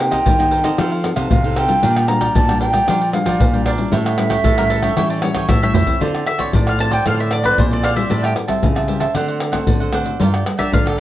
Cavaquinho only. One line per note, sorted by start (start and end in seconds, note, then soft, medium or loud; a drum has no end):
0.11 0.38 A#4 soft
0.11 0.38 C5 medium
0.11 0.37 D#5 medium
0.39 0.51 A#4 soft
0.39 0.51 C5 soft
0.39 0.51 D#5 medium
0.51 0.64 D#4 soft
0.51 0.64 A#4 soft
0.51 0.64 C5 soft
0.51 0.62 D#5 medium
0.64 0.77 A#4 medium
0.64 0.77 C5 medium
0.64 0.76 D#5 medium
0.78 0.90 D#4 medium
0.78 0.90 A4 medium
0.78 0.91 C5 medium
0.78 0.90 F5 medium
0.92 1.03 A4 soft
0.92 1.04 C5 soft
0.92 1.03 F5 soft
1.04 muted cavaquinho stroke soft
1.16 1.43 A4 medium
1.16 1.42 C5 medium
1.16 1.42 F5 medium
1.44 1.56 A4 soft
1.44 1.56 C5 soft
1.44 1.56 F5 soft
1.56 1.81 D#4 medium
1.56 1.82 A4 medium
1.56 1.82 C5 medium
1.56 1.82 F5 medium
1.83 1.95 D4 medium
1.83 1.95 A#4 medium
1.83 1.95 D5 medium
1.83 1.95 G5 medium
1.96 2.08 A#4 soft
1.96 2.08 D5 soft
1.96 2.08 G5 soft
2.09 muted cavaquinho stroke soft
2.21 2.47 A#4 medium
2.21 2.47 D5 medium
2.21 2.46 G5 medium
2.48 2.60 A#4 soft
2.48 2.61 D5 soft
2.48 2.60 G5 soft
2.60 2.73 D4 soft
2.60 2.73 A#4 soft
2.60 2.72 D5 medium
2.60 2.71 G5 medium
2.73 2.86 A#4 medium
2.73 2.86 D5 medium
2.73 2.85 G5 medium
2.87 2.99 D4 medium
2.87 3.00 A#4 medium
2.87 3.00 D5 medium
2.87 3.00 G5 medium
3.01 3.13 A#4 soft
3.01 3.13 D5 soft
3.01 3.13 G5 soft
3.14 muted cavaquinho stroke soft
3.26 3.52 A#4 medium
3.26 3.52 D5 medium
3.26 3.51 G5 medium
3.53 3.65 A#4 soft
3.53 3.65 D5 soft
3.53 3.65 G5 medium
3.66 3.91 D4 medium
3.66 3.91 A#4 medium
3.66 3.91 D5 medium
3.66 3.92 G5 medium
3.92 4.04 E4 medium
3.92 4.04 A4 medium
3.92 4.05 C#5 medium
3.92 4.04 G5 medium
4.05 4.17 A4 soft
4.05 4.17 C#5 soft
4.05 4.17 G5 soft
4.18 muted cavaquinho stroke soft
4.30 4.56 A4 medium
4.30 4.56 C#5 medium
4.30 4.55 G5 medium
4.57 4.69 A4 soft
4.57 4.70 C#5 soft
4.57 4.69 G5 soft
4.69 4.82 E4 soft
4.69 4.82 A4 soft
4.69 4.82 C#5 medium
4.69 4.81 G5 medium
4.82 4.96 A4 medium
4.82 4.95 C#5 medium
4.82 4.95 G5 medium
4.97 5.08 E4 medium
4.97 5.09 A4 medium
4.97 5.09 C#5 medium
4.97 5.08 G5 medium
5.10 5.21 A4 soft
5.10 5.22 C#5 soft
5.10 5.22 G5 soft
5.22 muted cavaquinho stroke soft
5.34 5.61 A4 soft
5.34 5.60 C#5 medium
5.34 5.60 G5 medium
5.62 5.73 A4 soft
5.62 5.74 C#5 soft
5.62 5.74 G5 soft
5.73 5.99 E4 medium
5.73 6.00 A4 medium
5.73 6.00 C#5 medium
5.73 6.00 G5 medium
6.01 6.13 F4 medium
6.01 6.13 A4 medium
6.01 6.14 C5 medium
6.01 6.13 D5 medium
6.14 6.25 A4 soft
6.14 6.26 C5 soft
6.14 6.26 D5 soft
6.26 muted cavaquinho stroke soft
6.38 6.65 A4 medium
6.38 6.65 C5 soft
6.38 6.64 D5 medium
6.67 6.78 A4 soft
6.67 6.78 C5 soft
6.67 6.79 D5 medium
6.78 6.91 F4 soft
6.78 6.91 A4 soft
6.78 6.90 C5 soft
6.78 6.90 D5 medium
6.91 7.05 A4 medium
6.91 7.04 C5 medium
6.91 7.04 D5 medium
7.05 7.17 F4 medium
7.05 7.18 A4 medium
7.05 7.18 C5 medium
7.05 7.18 D5 medium
7.19 7.30 A4 soft
7.19 7.31 C5 soft
7.19 7.31 D5 soft
7.31 muted cavaquinho stroke soft
7.43 7.70 A4 soft
7.43 7.70 C5 medium
7.43 7.69 D5 medium
7.71 7.83 A4 soft
7.71 7.83 C5 medium
7.71 7.83 D5 soft
7.83 8.09 F4 medium
7.83 8.09 A4 medium
7.83 8.09 C5 medium
7.83 8.10 D5 medium
8.10 8.22 G4 medium
8.10 8.22 C5 medium
8.10 8.23 E5 medium
8.10 8.22 A5 medium
8.23 8.35 C5 soft
8.23 8.35 E5 soft
8.23 8.35 A5 soft
8.36 muted cavaquinho stroke soft
8.48 8.75 C5 medium
8.48 8.74 E5 medium
8.48 8.74 A5 medium
8.75 8.87 C5 soft
8.75 8.88 E5 soft
8.75 8.88 A5 soft
8.88 9.00 G4 soft
8.88 9.01 C5 soft
8.88 9.00 E5 soft
8.88 8.99 A5 medium
9.00 9.14 C5 medium
9.00 9.13 E5 medium
9.00 9.13 A5 medium
9.14 9.27 D4 medium
9.14 9.27 A4 medium
9.14 9.27 C5 medium
9.14 9.27 F#5 medium
9.28 9.39 A4 soft
9.28 9.40 C5 soft
9.28 9.40 F#5 soft
9.40 muted cavaquinho stroke soft
9.52 9.79 A4 medium
9.52 9.79 C5 medium
9.52 9.78 F#5 medium
9.81 9.92 A4 soft
9.81 9.93 C5 soft
9.81 9.93 F#5 soft
9.93 10.19 D4 medium
9.93 10.19 A4 medium
9.93 10.19 C5 medium
9.93 10.19 F#5 medium
10.20 10.32 F4 medium
10.20 10.32 A#4 medium
10.20 10.33 D5 medium
10.20 10.32 G5 medium
10.34 10.45 A#4 soft
10.34 10.45 D5 soft
10.34 10.45 G5 soft
10.45 muted cavaquinho stroke soft
10.58 10.85 A#4 medium
10.58 10.84 D5 medium
10.58 10.84 G5 medium
10.85 10.97 A#4 soft
10.85 10.97 D5 soft
10.85 10.97 G5 soft